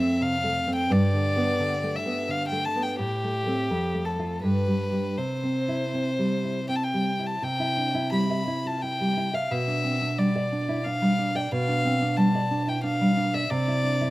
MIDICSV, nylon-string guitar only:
0, 0, Header, 1, 2, 480
1, 0, Start_track
1, 0, Key_signature, 0, "major"
1, 0, Tempo, 698487
1, 625, Time_signature, 3, 2, 24, 8
1, 2548, Tempo, 745342
1, 4948, Tempo, 687285
1, 6868, Tempo, 662252
1, 9707, End_track
2, 0, Start_track
2, 0, Title_t, "Nylon-string guitar"
2, 0, Program_c, 0, 24
2, 0, Note_on_c, 0, 41, 75
2, 0, Note_on_c, 0, 57, 53
2, 0, Note_on_c, 0, 60, 52
2, 83, Note_off_c, 0, 57, 0
2, 144, Note_on_c, 0, 48, 59
2, 241, Note_off_c, 0, 60, 0
2, 301, Note_on_c, 0, 57, 53
2, 400, Note_off_c, 0, 48, 0
2, 461, Note_on_c, 0, 60, 56
2, 559, Note_off_c, 0, 57, 0
2, 598, Note_off_c, 0, 41, 0
2, 619, Note_on_c, 0, 43, 76
2, 623, Note_off_c, 0, 60, 0
2, 778, Note_on_c, 0, 50, 50
2, 936, Note_on_c, 0, 59, 56
2, 1034, Note_off_c, 0, 50, 0
2, 1099, Note_on_c, 0, 50, 53
2, 1193, Note_off_c, 0, 59, 0
2, 1260, Note_on_c, 0, 57, 54
2, 1354, Note_off_c, 0, 50, 0
2, 1414, Note_on_c, 0, 59, 57
2, 1515, Note_off_c, 0, 57, 0
2, 1571, Note_on_c, 0, 50, 54
2, 1671, Note_off_c, 0, 59, 0
2, 1733, Note_on_c, 0, 57, 51
2, 1830, Note_off_c, 0, 50, 0
2, 1894, Note_on_c, 0, 59, 54
2, 1992, Note_off_c, 0, 57, 0
2, 2029, Note_off_c, 0, 43, 0
2, 2056, Note_on_c, 0, 45, 70
2, 2057, Note_off_c, 0, 59, 0
2, 2227, Note_on_c, 0, 57, 45
2, 2374, Note_off_c, 0, 57, 0
2, 2383, Note_on_c, 0, 57, 47
2, 2386, Note_on_c, 0, 60, 50
2, 2531, Note_off_c, 0, 57, 0
2, 2532, Note_off_c, 0, 45, 0
2, 2532, Note_off_c, 0, 60, 0
2, 2545, Note_on_c, 0, 41, 61
2, 2698, Note_on_c, 0, 57, 47
2, 2850, Note_off_c, 0, 57, 0
2, 2857, Note_on_c, 0, 57, 42
2, 2862, Note_on_c, 0, 65, 47
2, 2998, Note_off_c, 0, 41, 0
2, 2999, Note_off_c, 0, 57, 0
2, 3000, Note_off_c, 0, 65, 0
2, 3016, Note_on_c, 0, 43, 60
2, 3170, Note_on_c, 0, 55, 46
2, 3324, Note_off_c, 0, 55, 0
2, 3331, Note_on_c, 0, 55, 41
2, 3336, Note_on_c, 0, 62, 43
2, 3479, Note_off_c, 0, 55, 0
2, 3480, Note_off_c, 0, 62, 0
2, 3483, Note_off_c, 0, 43, 0
2, 3494, Note_on_c, 0, 48, 59
2, 3658, Note_on_c, 0, 60, 45
2, 3820, Note_on_c, 0, 64, 48
2, 3920, Note_off_c, 0, 60, 0
2, 3982, Note_on_c, 0, 60, 40
2, 4082, Note_off_c, 0, 64, 0
2, 4144, Note_on_c, 0, 55, 42
2, 4244, Note_off_c, 0, 60, 0
2, 4307, Note_on_c, 0, 64, 41
2, 4405, Note_off_c, 0, 55, 0
2, 4467, Note_on_c, 0, 60, 42
2, 4568, Note_off_c, 0, 64, 0
2, 4628, Note_on_c, 0, 55, 38
2, 4729, Note_off_c, 0, 60, 0
2, 4792, Note_on_c, 0, 64, 43
2, 4886, Note_off_c, 0, 55, 0
2, 4923, Note_off_c, 0, 48, 0
2, 4941, Note_on_c, 0, 48, 69
2, 4947, Note_off_c, 0, 64, 0
2, 5061, Note_on_c, 0, 64, 47
2, 5182, Note_on_c, 0, 62, 43
2, 5261, Note_off_c, 0, 64, 0
2, 5304, Note_on_c, 0, 64, 54
2, 5309, Note_off_c, 0, 62, 0
2, 5424, Note_on_c, 0, 55, 55
2, 5504, Note_off_c, 0, 64, 0
2, 5552, Note_on_c, 0, 76, 53
2, 5625, Note_off_c, 0, 55, 0
2, 5671, Note_off_c, 0, 76, 0
2, 5674, Note_on_c, 0, 64, 50
2, 5799, Note_on_c, 0, 65, 46
2, 5871, Note_off_c, 0, 64, 0
2, 5921, Note_off_c, 0, 65, 0
2, 5924, Note_on_c, 0, 64, 52
2, 6045, Note_on_c, 0, 55, 50
2, 6114, Note_off_c, 0, 64, 0
2, 6159, Note_on_c, 0, 64, 56
2, 6234, Note_off_c, 0, 55, 0
2, 6272, Note_off_c, 0, 64, 0
2, 6275, Note_on_c, 0, 76, 56
2, 6366, Note_off_c, 0, 48, 0
2, 6396, Note_off_c, 0, 76, 0
2, 6397, Note_on_c, 0, 47, 70
2, 6513, Note_on_c, 0, 62, 53
2, 6628, Note_on_c, 0, 60, 46
2, 6704, Note_off_c, 0, 62, 0
2, 6748, Note_on_c, 0, 62, 50
2, 6750, Note_off_c, 0, 60, 0
2, 6866, Note_on_c, 0, 55, 54
2, 6940, Note_off_c, 0, 62, 0
2, 6992, Note_on_c, 0, 74, 58
2, 7061, Note_off_c, 0, 55, 0
2, 7113, Note_on_c, 0, 62, 55
2, 7183, Note_off_c, 0, 74, 0
2, 7232, Note_on_c, 0, 64, 51
2, 7303, Note_off_c, 0, 62, 0
2, 7351, Note_off_c, 0, 64, 0
2, 7356, Note_on_c, 0, 62, 53
2, 7472, Note_on_c, 0, 55, 48
2, 7544, Note_off_c, 0, 62, 0
2, 7594, Note_on_c, 0, 62, 56
2, 7663, Note_off_c, 0, 55, 0
2, 7714, Note_on_c, 0, 74, 61
2, 7784, Note_off_c, 0, 62, 0
2, 7799, Note_off_c, 0, 47, 0
2, 7832, Note_off_c, 0, 74, 0
2, 7836, Note_on_c, 0, 47, 79
2, 7952, Note_on_c, 0, 62, 51
2, 8075, Note_on_c, 0, 60, 46
2, 8141, Note_off_c, 0, 62, 0
2, 8191, Note_off_c, 0, 60, 0
2, 8194, Note_on_c, 0, 62, 55
2, 8310, Note_on_c, 0, 55, 55
2, 8383, Note_off_c, 0, 62, 0
2, 8436, Note_on_c, 0, 74, 61
2, 8502, Note_off_c, 0, 55, 0
2, 8553, Note_on_c, 0, 62, 54
2, 8625, Note_off_c, 0, 74, 0
2, 8672, Note_on_c, 0, 64, 47
2, 8744, Note_off_c, 0, 62, 0
2, 8789, Note_on_c, 0, 62, 62
2, 8792, Note_off_c, 0, 64, 0
2, 8917, Note_on_c, 0, 55, 58
2, 8983, Note_off_c, 0, 62, 0
2, 9031, Note_on_c, 0, 62, 58
2, 9107, Note_off_c, 0, 55, 0
2, 9156, Note_on_c, 0, 74, 65
2, 9224, Note_off_c, 0, 62, 0
2, 9247, Note_off_c, 0, 47, 0
2, 9274, Note_off_c, 0, 74, 0
2, 9278, Note_on_c, 0, 48, 83
2, 9400, Note_on_c, 0, 64, 55
2, 9517, Note_on_c, 0, 62, 55
2, 9587, Note_off_c, 0, 64, 0
2, 9634, Note_off_c, 0, 62, 0
2, 9641, Note_on_c, 0, 64, 59
2, 9707, Note_off_c, 0, 48, 0
2, 9707, Note_off_c, 0, 64, 0
2, 9707, End_track
0, 0, End_of_file